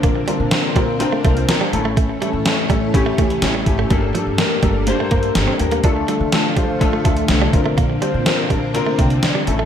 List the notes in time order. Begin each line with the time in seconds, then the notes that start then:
Already playing: D3 A#3 C4 D4 F4 A#4
0.03 A#1 A#3, kick, closed hi-hat
0.16 muted clean electric guitar stroke
0.27 G3 C4 D4 F4 A#4, closed hi-hat
0.40 A#2
0.51 C4 D4 F4 A#4, snare, closed hi-hat
0.76 A#1 G3 C4 D4 F4 A#4 F5, kick, closed hi-hat
0.99 C4 D4 F4 A#4 G5, muted clean electric guitar stroke, closed hi-hat
1.12 A3
1.24 C2 A3 C4 D4 F4 C5 A5, kick, closed hi-hat
1.37 closed hi-hat
1.48 C4 D4 F4 A#4 A#5, snare, closed hi-hat
1.61 G3
1.72 A1 E3 A3 A#3 C#4 E4 A4 A5, muted clean electric guitar stroke, closed hi-hat
1.79 C#4
1.85 A3
1.97 A3, kick, closed hi-hat
2.09 muted clean electric guitar stroke
2.21 G3 A3 C#4 E4 A4, closed hi-hat
2.33 A2
2.45 A3 C#4 E4 A4, snare, closed hi-hat
2.69 A2 G3 A3 C#4 E4 A4, kick, closed hi-hat
2.94 A1 A3 C#4 E4 G4, muted clean electric guitar stroke, kick, closed hi-hat
3.06 A3
3.18 C#2 A3 C#4 E4 G4, kick, closed hi-hat
3.30 closed hi-hat
3.42 A1 A3 C#4 E4 G4, snare, closed hi-hat
3.55 G3
3.66 G#1 A3 C#4 E4 G4, muted clean electric guitar stroke, kick, closed hi-hat
3.79 A3
3.90 G1 G3 A#3 D4 G4 A4, kick, closed hi-hat
4.03 muted clean electric guitar stroke
4.14 F3 A#3 D4 G4 A4, closed hi-hat
4.27 G2
4.38 A#3 D4 G4 A#4, snare, closed hi-hat
4.63 G1 G3 A#3 D4 G4 A4, kick, closed hi-hat
4.87 A#3 D4 G4 C5, muted clean electric guitar stroke, closed hi-hat
5.00 A3
5.11 G2 A#3 D4 G4 A#4, kick, closed hi-hat
5.23 closed hi-hat
5.35 G1 A#3 D4 G4 A4, snare, closed hi-hat
5.48 C4
5.59 D#2 A#3 D4 G4 A#4, muted clean electric guitar stroke, closed hi-hat
5.71 A#3, closed hi-hat
5.84 D2 D3 A3 D4 F4 A4, kick, closed hi-hat
5.96 muted clean electric guitar stroke
6.08 G3 A3 D4 F4 A4, closed hi-hat
6.20 D3
6.32 A3 D4 F4 A4, snare, closed hi-hat
6.56 D2 G3 A3 D4 F4 C5, kick, closed hi-hat
6.80 F2 A3 D4 F4 A4, muted clean electric guitar stroke, kick, closed hi-hat
6.93 A3
7.04 D2 A3 D4 F4 A4, kick, closed hi-hat
7.17 closed hi-hat
7.28 C2 A3 D4 F4 A4, snare, closed hi-hat
7.42 G3
7.53 A#1 A#3 C4 D4 F4 A#4, muted clean electric guitar stroke, kick, closed hi-hat
7.66 A3
7.78 A#1 A#3, kick, closed hi-hat
7.90 muted clean electric guitar stroke
8.01 G3 C4 D4 F4 C5, closed hi-hat
8.14 A#2
8.26 C4 D4 F4 A#4, snare, closed hi-hat
8.50 A#1 G3 C4 D4 F4 A#4, kick, closed hi-hat
8.74 C4 D4 F4 A#4, muted clean electric guitar stroke, closed hi-hat
8.87 A3
8.99 C2 A3 A#4 G5, kick, closed hi-hat
9.10 closed hi-hat
9.22 F4 D5, snare, closed hi-hat
9.35 G3
9.46 A1 E3 A3 C#4 E4 A4, muted clean electric guitar stroke, closed hi-hat
9.59 A3